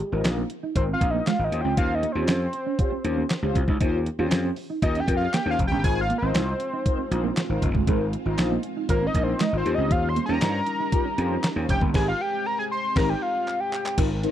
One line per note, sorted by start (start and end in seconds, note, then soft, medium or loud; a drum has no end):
0.00 0.29 G4 medium
0.00 closed hi-hat medium
0.11 0.21 G#1 medium
0.11 0.42 C4 medium
0.11 0.21 C4 medium
0.11 0.42 D#4 medium
0.11 0.42 F4 medium
0.11 0.42 A#4 loud
0.25 0.43 A#1 medium
0.25 snare loud
0.25 clap medium
0.25 closed hi-hat medium
0.38 0.47 A#3 medium
0.50 muted clean electric guitar stroke soft
0.50 closed hi-hat medium
0.63 0.72 D#4 medium
0.75 0.94 G#1 loud
0.75 0.87 C4 medium
0.75 0.87 D#4 medium
0.75 0.88 F4 medium
0.75 0.88 A#4 medium
0.75 0.84 C5 medium
0.75 kick loud
0.75 closed hi-hat medium
0.89 0.98 C4 medium
0.93 1.12 F5 loud
1.01 1.19 A#1 medium
1.01 1.19 C4 medium
1.01 1.19 D#4 medium
1.01 1.19 F4 medium
1.01 1.19 A#4 medium
1.01 kick loud
1.01 closed hi-hat medium
1.10 1.23 A#3 medium
1.10 1.29 D#5 medium
1.27 1.36 G#3 medium
1.27 1.45 F5 loud
1.27 snare loud
1.27 clap medium
1.27 closed hi-hat medium
1.39 1.48 G#1 medium
1.39 1.52 C4 medium
1.39 1.52 D#4 medium
1.39 1.51 F4 medium
1.39 1.52 A#4 medium
1.44 1.62 D#5 loud
1.52 1.61 D#2 medium
1.52 2.03 C#4 medium
1.52 2.03 F4 medium
1.52 2.03 G4 medium
1.52 2.03 C5 medium
1.52 muted clean electric guitar stroke soft
1.52 closed hi-hat medium
1.61 1.73 C#2 medium
1.61 1.77 G5 loud
1.65 1.74 C4 medium
1.77 2.04 D#2 loud
1.77 1.96 F5 loud
1.77 kick loud
1.77 closed hi-hat medium
1.90 muted clean electric guitar stroke soft
1.95 2.13 D#5 loud
2.03 2.12 A#3 medium
2.03 closed hi-hat medium
2.12 2.24 D#2 medium
2.12 2.25 C4 medium
2.12 2.45 C#4 medium
2.12 2.45 F4 medium
2.12 2.45 G4 medium
2.12 3.39 C5 medium
2.12 2.45 C5 medium
2.28 2.46 F2 medium
2.28 2.37 C#4 medium
2.28 snare loud
2.28 clap medium
2.28 closed hi-hat loud
2.53 muted clean electric guitar stroke soft
2.53 closed hi-hat medium
2.66 2.75 C#4 medium
2.78 2.91 C#4 medium
2.78 2.91 F4 medium
2.78 2.91 G4 medium
2.78 2.91 C5 loud
2.78 kick loud
2.78 closed hi-hat medium
2.92 3.01 C4 medium
3.04 3.22 D#2 medium
3.04 3.22 C#4 medium
3.04 3.22 F4 medium
3.04 3.22 G4 medium
3.04 3.23 C5 medium
3.04 muted clean electric guitar stroke soft
3.04 closed hi-hat medium
3.17 3.26 A#3 medium
3.30 snare loud
3.30 clap medium
3.30 closed hi-hat medium
3.42 3.51 C#2 medium
3.42 3.60 C#4 medium
3.42 3.60 F4 medium
3.42 3.60 G4 medium
3.42 3.60 C5 loud
3.55 3.64 C2 medium
3.55 3.64 C4 medium
3.55 kick medium
3.55 closed hi-hat medium
3.68 3.77 C#2 medium
3.68 3.77 D#4 medium
3.68 kick medium
3.80 4.08 D#2 loud
3.80 3.98 C#4 medium
3.80 3.90 D#4 medium
3.80 3.98 F4 medium
3.80 3.99 G4 medium
3.80 3.99 C5 loud
3.80 kick loud
3.80 closed hi-hat medium
4.06 muted clean electric guitar stroke soft
4.06 closed hi-hat medium
4.18 4.28 D#2 medium
4.18 4.49 C#4 medium
4.18 4.49 F4 medium
4.18 4.28 F4 medium
4.18 4.49 G4 medium
4.18 4.49 C5 loud
4.31 4.49 F2 medium
4.31 snare loud
4.31 clap medium
4.31 closed hi-hat loud
4.45 4.54 C4 medium
4.56 muted clean electric guitar stroke soft
4.56 open hi-hat medium
4.70 4.79 D#4 medium
4.82 5.00 D#2 medium
4.82 4.94 C#4 medium
4.82 4.94 F4 medium
4.82 4.94 G4 medium
4.82 4.94 A#4 medium
4.82 5.01 D#5 medium
4.82 kick loud
4.82 closed hi-hat medium
4.95 5.04 C#4 medium
4.95 closed hi-hat medium
5.00 5.16 G5 loud
5.07 5.26 F2 medium
5.07 5.25 C#4 medium
5.07 5.26 F4 medium
5.07 5.26 G4 medium
5.07 5.26 A#4 medium
5.07 kick loud
5.07 closed hi-hat medium
5.17 5.30 C4 medium
5.17 5.35 F5 medium
5.33 5.43 A#3 medium
5.33 5.50 G5 loud
5.33 snare loud
5.33 clap loud
5.33 closed hi-hat medium
5.45 5.55 D#2 medium
5.45 5.63 C#4 medium
5.45 5.64 F4 medium
5.45 5.64 G4 medium
5.45 5.64 C5 medium
5.51 5.58 F5 loud
5.59 5.68 F1 loud
5.59 muted clean electric guitar stroke soft
5.59 kick medium
5.59 closed hi-hat medium
5.67 5.80 G1 medium
5.67 5.83 G5 loud
5.72 5.81 C#4 medium
5.83 6.11 G#1 loud
5.83 9.62 G#3 medium
5.83 9.62 C4 medium
5.83 6.02 D#4 medium
5.83 6.02 F4 medium
5.83 9.62 F4 medium
5.83 6.02 A#4 medium
5.83 6.02 C5 medium
5.83 6.00 G#5 loud
5.83 kick loud
5.83 closed hi-hat medium
5.97 6.17 F5 loud
5.97 muted clean electric guitar stroke soft
6.10 6.19 A#3 medium
6.10 closed hi-hat medium
6.18 6.31 G#1 loud
6.18 6.52 D#4 medium
6.18 6.52 F4 medium
6.18 6.52 A#4 medium
6.18 7.41 C5 medium
6.22 6.31 C4 medium
6.22 6.52 D#5 medium
6.35 6.53 C2 medium
6.35 6.44 D#4 medium
6.35 snare loud
6.35 clap medium
6.35 closed hi-hat medium
6.60 muted clean electric guitar stroke soft
6.60 closed hi-hat medium
6.73 6.82 D#4 medium
6.85 6.97 D#4 medium
6.85 6.98 F4 medium
6.85 6.98 A#4 medium
6.85 6.98 C5 medium
6.85 kick loud
6.85 closed hi-hat medium
6.99 7.08 C4 medium
7.11 7.29 A#1 medium
7.11 7.29 D#4 medium
7.11 7.29 F4 medium
7.11 7.29 A#4 medium
7.11 7.29 C5 medium
7.11 muted clean electric guitar stroke soft
7.11 closed hi-hat medium
7.24 7.33 A#3 medium
7.37 snare loud
7.37 clap medium
7.37 closed hi-hat medium
7.49 7.58 G#1 medium
7.49 7.67 D#4 medium
7.49 7.67 F4 medium
7.49 7.67 A#4 medium
7.49 7.67 C5 loud
7.62 7.71 F1 medium
7.62 7.71 C4 medium
7.62 kick medium
7.62 closed hi-hat medium
7.75 7.84 G1 loud
7.75 7.84 G#3 medium
7.75 kick medium
7.87 8.15 G#1 loud
7.87 7.97 G#3 medium
7.87 8.05 D#4 medium
7.87 8.05 F4 medium
7.87 8.05 A#4 medium
7.87 8.06 C5 loud
7.87 kick loud
7.87 closed hi-hat medium
8.13 muted clean electric guitar stroke soft
8.13 closed hi-hat medium
8.25 8.35 G#1 medium
8.25 8.35 C4 medium
8.25 8.55 D#4 loud
8.25 8.55 F4 medium
8.25 8.56 A#4 medium
8.25 8.56 C5 loud
8.38 8.56 A#1 medium
8.38 snare loud
8.38 clap medium
8.38 closed hi-hat loud
8.51 8.60 A#3 medium
8.63 muted clean electric guitar stroke soft
8.63 closed hi-hat medium
8.77 8.86 D#4 medium
8.89 9.07 G#1 loud
8.89 9.01 D#4 medium
8.89 9.01 F4 medium
8.89 9.01 A#4 medium
8.89 9.08 A#4 medium
8.89 9.01 C5 medium
8.89 kick loud
8.89 closed hi-hat medium
9.02 9.11 C4 medium
9.07 9.25 D#5 loud
9.14 9.33 A#1 medium
9.14 9.32 D#4 medium
9.14 9.32 F4 medium
9.14 9.33 A#4 medium
9.14 9.33 D#5 medium
9.14 kick loud
9.14 closed hi-hat medium
9.23 9.36 A#3 medium
9.23 9.42 C5 medium
9.40 9.49 G#3 medium
9.40 9.57 D#5 loud
9.40 snare loud
9.40 clap medium
9.40 closed hi-hat medium
9.52 9.62 G#1 medium
9.52 9.65 D#4 medium
9.52 9.64 F4 medium
9.52 9.65 A#4 medium
9.52 9.66 C5 medium
9.57 9.76 C5 loud
9.65 9.75 D#2 medium
9.65 11.92 G3 medium
9.65 10.16 C#4 medium
9.65 11.92 C#4 medium
9.65 11.92 D#4 medium
9.65 10.16 F4 medium
9.65 10.16 G4 medium
9.65 9.72 B4 medium
9.65 muted clean electric guitar stroke soft
9.65 closed hi-hat medium
9.71 10.19 C5 medium
9.71 9.93 D#5 loud
9.78 9.91 C#2 loud
9.78 9.87 C4 medium
9.91 10.18 D#2 loud
9.91 10.10 F5 loud
9.91 kick loud
9.91 closed hi-hat medium
10.04 muted clean electric guitar stroke soft
10.09 10.25 C6 loud
10.16 10.25 A#3 medium
10.16 closed hi-hat medium
10.26 10.38 D#2 loud
10.26 10.59 C#4 medium
10.26 10.38 C#4 medium
10.26 10.59 F4 medium
10.26 10.59 G4 medium
10.26 10.59 C5 medium
10.26 11.48 A#5 loud
10.41 10.60 G2 medium
10.41 10.51 D#4 loud
10.41 snare loud
10.41 clap medium
10.41 closed hi-hat loud
10.66 muted clean electric guitar stroke soft
10.66 closed hi-hat medium
10.80 10.89 D#4 medium
10.92 11.04 C#4 medium
10.92 11.04 F4 medium
10.92 11.05 G4 medium
10.92 11.05 A#4 medium
10.92 kick loud
10.92 closed hi-hat medium
11.05 11.14 C#4 medium
11.17 11.36 F2 medium
11.17 11.36 C#4 medium
11.17 11.36 F4 medium
11.17 11.36 G4 medium
11.17 11.36 C5 loud
11.17 muted clean electric guitar stroke soft
11.17 closed hi-hat medium
11.31 11.40 C4 medium
11.44 muted clean electric guitar stroke soft
11.44 snare loud
11.44 clap medium
11.44 closed hi-hat medium
11.55 11.65 D#2 medium
11.55 11.74 C#4 medium
11.55 11.74 F4 medium
11.55 11.74 G4 medium
11.55 11.74 C5 medium
11.69 11.78 F1 loud
11.69 11.78 C#4 medium
11.69 11.81 G5 loud
11.69 kick medium
11.69 closed hi-hat medium
11.81 11.90 G1 loud
11.81 11.91 A#3 medium
11.81 kick loud
11.94 12.12 G#1 loud
11.94 13.96 G#3 medium
11.94 12.11 C4 loud
11.94 13.96 C4 medium
11.94 12.11 D#4 loud
11.94 12.11 G4 loud
11.94 13.96 G4 loud
11.94 12.12 A#4 loud
11.94 12.07 G#5 loud
11.94 kick loud
11.94 snare loud
11.94 crash medium
12.08 12.23 F5 loud
12.21 12.48 G5 loud
12.46 12.58 A#5 loud
12.59 12.64 G#5 medium
12.72 12.98 C6 medium
12.96 13.13 G#1 loud
12.96 13.13 C4 medium
12.96 13.13 D#4 loud
12.96 13.13 G4 loud
12.96 13.13 A#4 loud
12.96 13.11 A#5 loud
12.96 kick loud
12.96 snare loud
12.96 crash medium
13.09 13.24 G5 medium
13.22 13.62 F5 loud
13.48 clap medium
13.60 13.98 G5 medium
13.73 clap medium
13.86 clap medium
13.97 14.25 G#1 loud
13.97 14.31 G#3 medium
13.97 14.09 C4 medium
13.97 14.31 C4 medium
13.97 14.10 D#4 medium
13.97 14.31 F4 medium
13.97 14.10 F4 medium
13.97 14.10 A#4 medium
13.97 kick loud
13.97 closed hi-hat loud
13.97 crash loud
14.23 14.31 C4 medium
14.23 14.31 D#4 medium
14.23 14.31 F4 medium
14.23 14.31 A#4 loud
14.23 closed hi-hat medium